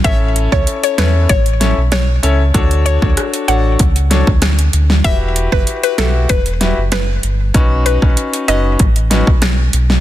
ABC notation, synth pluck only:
X:1
M:4/4
L:1/16
Q:1/4=96
K:Edor
V:1 name="Synth pluck"
e z2 c z c B z c3 z c3 z | z2 c z3 f2 z8 | e z2 B z B A z B3 z B3 z | z2 B z3 ^d2 z8 |]